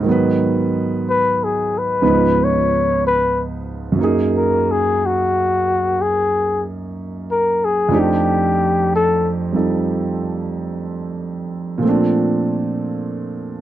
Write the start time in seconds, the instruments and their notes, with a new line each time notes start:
0.00 grand piano G#2 D#3
0.06 grand piano F#3 B3
0.11 grand piano B4
1.10 muted trumpet B4
1.44 muted trumpet G#4
1.78 muted trumpet B4
2.01 grand piano C#2 G#2 F3 B3 D#4 B4
2.44 muted trumpet C#5
3.07 muted trumpet B4
3.92 grand piano F#2 F#3
3.99 grand piano A#3 D#4
4.04 grand piano G#4
4.37 muted trumpet A#4
4.71 muted trumpet G#4
5.06 muted trumpet F#4
6.01 muted trumpet G#4
7.31 muted trumpet A#4
7.65 muted trumpet G#4
7.89 grand piano F2 F3 A3 D4
7.93 grand piano D#4 G4
8.00 muted trumpet G4
8.95 muted trumpet A4
9.53 grand piano G3 C4 D#4 F4 A4
11.78 grand piano A#2 F3
11.83 grand piano A3 C4
11.89 grand piano D4